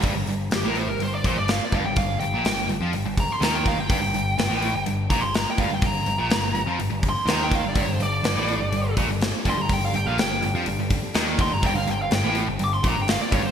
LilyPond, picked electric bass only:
\new Staff \with { instrumentName = "Picked electric bass" } { \clef bass \time 4/4 \key g \minor \tempo 4 = 124 g,,16 g,,16 g,,8 g,,16 a,,8 g,,16 g,,8 bes,,16 g,,8 r16 g,,16 g,,16 | g,,8 g,,16 bes,,16 g,,8 g,,16 f,16 g,,16 g,,8 r16 ees,8. g,,16 | g,,16 g,,16 g,,8 g,,16 a,,8 g,,16 g,,8 bes,,16 g,,8 r16 g,,16 g,,16 | g,,8 g,,16 bes,,16 g,,8 g,,16 f,16 g,,16 g,,8 r16 ees,8. g,,16 |
g,,16 g,,16 g,,8 g,,16 a,,8 g,,16 g,,8 bes,,16 g,,8 r16 g,,16 g,,16 | g,,8 g,,16 bes,,16 g,,8 g,,16 f,16 g,,16 g,,8 r16 ees,8. g,,16 | g,,16 g,,16 g,,8 g,,16 a,,8 g,,16 g,,8 bes,,16 g,,8 r16 g,,16 g,,16 | }